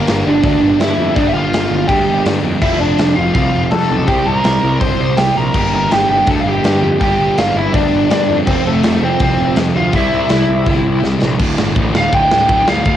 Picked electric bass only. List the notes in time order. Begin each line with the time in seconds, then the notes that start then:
0.08 G1
0.27 G1
0.43 D2
0.62 G1
0.79 G2
0.98 F2
1.16 G1
1.34 G1
1.53 G1
1.71 G1
1.89 D2
2.07 G1
2.26 G2
2.43 F2
2.62 F1
2.80 F1
2.99 F1
3.18 F1
3.35 C2
3.54 F1
3.72 F2
3.91 B1
4.08 C2
4.26 C2
4.44 C2
4.63 C2
4.81 G1
5.00 C2
5.17 C2
5.37 A#1
5.54 G1
5.73 G1
5.91 G1
6.09 G1
6.27 D2
6.46 G1
6.64 G2
6.83 F2
7.01 G1
7.20 G1
7.37 G1
7.56 G1
7.74 D2
7.94 G1
8.11 G2
8.30 F2
8.47 F1
8.67 F1
8.85 F1
9.02 F1
9.20 C2
9.39 F1
9.57 F2
9.76 D2
9.93 C2
10.12 C2
10.30 C2
10.49 C2
10.67 G1
10.85 C2
11.03 C2
11.22 A#1
11.40 D1
11.58 G1
11.76 A1
11.94 D1
12.13 D1
12.31 D1
12.49 D1
12.68 D1
12.86 D1